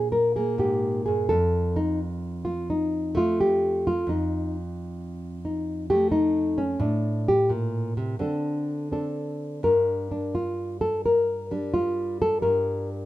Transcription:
Already playing: A#2 D4 G#4 C5
0.12 A#4
0.36 A#3 G#4
0.58 G#2 G4
1.06 G2 G#4
1.29 F2 A4
1.76 D#4
2.45 F4
2.70 D#4
3.15 A3 F4
3.40 G4
3.87 F4
4.07 F2 D#4
5.45 D#4
5.90 A3 G4
6.12 D#4
6.58 C#4
6.80 A2 D4
7.28 G4
7.49 A#2
7.97 C3
8.19 D3 C4 D4 A4
8.92 C4 D4 A4
9.63 G2 A#4
10.11 D4
10.35 F4
10.81 A4
11.06 A#4
11.51 G3 D4
11.74 F4
12.22 A4
12.42 G2 A#4

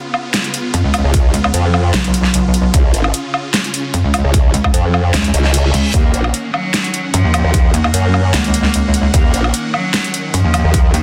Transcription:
Already playing: C#3 B3 F4
0.14 low woodblock
0.34 snare, closed hi-hat
0.44 closed hi-hat
0.54 closed hi-hat
0.74 F2, closed hi-hat
0.84 C#2
0.94 closed hi-hat, low woodblock
1.04 C#2
1.14 kick, closed hi-hat
1.34 C#2, closed hi-hat
1.44 low woodblock
1.54 F2, closed hi-hat
1.74 low woodblock
1.94 B1, snare, closed hi-hat
2.04 closed hi-hat
2.14 closed hi-hat
2.24 snare
2.34 closed hi-hat
2.54 closed hi-hat
2.74 C#2 C#4, kick, closed hi-hat
2.94 G#1, closed hi-hat
3.04 low woodblock
3.14 closed hi-hat
3.34 low woodblock
3.54 snare, closed hi-hat
3.64 closed hi-hat
3.74 closed hi-hat
3.94 F2, closed hi-hat
4.04 C#2
4.14 closed hi-hat, low woodblock
4.24 C#2
4.34 kick, closed hi-hat
4.54 C#2, closed hi-hat
4.64 kick, low woodblock
4.74 F2, closed hi-hat
4.94 low woodblock
5.14 C#2, snare, closed hi-hat, reverse cymbal
5.24 closed hi-hat
5.34 C#2, closed hi-hat
5.44 snare
5.54 closed hi-hat
5.74 C#2, closed hi-hat
5.94 D#2 D#3 A#3, kick, closed hi-hat
6.14 A#1, closed hi-hat
6.24 low woodblock
6.34 closed hi-hat
6.54 F#3, low woodblock
6.74 snare, closed hi-hat
6.84 closed hi-hat
6.94 closed hi-hat
7.14 F#2 F3, closed hi-hat
7.24 D#2
7.34 closed hi-hat, low woodblock
7.44 D#2
7.54 kick, closed hi-hat
7.74 D#2 A#3, closed hi-hat
7.84 low woodblock
7.94 F#2, closed hi-hat
8.14 low woodblock
8.34 C#2 A#3, snare, closed hi-hat
8.44 closed hi-hat
8.54 closed hi-hat
8.64 snare
8.74 closed hi-hat
8.94 closed hi-hat
9.14 D#2 A#3, kick, closed hi-hat
9.34 A#1, closed hi-hat
9.44 low woodblock
9.54 closed hi-hat
9.74 F#3, low woodblock
9.94 snare, closed hi-hat
10.04 closed hi-hat
10.14 closed hi-hat
10.34 F#2 F3, closed hi-hat
10.44 D#2
10.54 closed hi-hat, low woodblock
10.64 D#2
10.74 kick, closed hi-hat
10.94 D#2 D#3, closed hi-hat

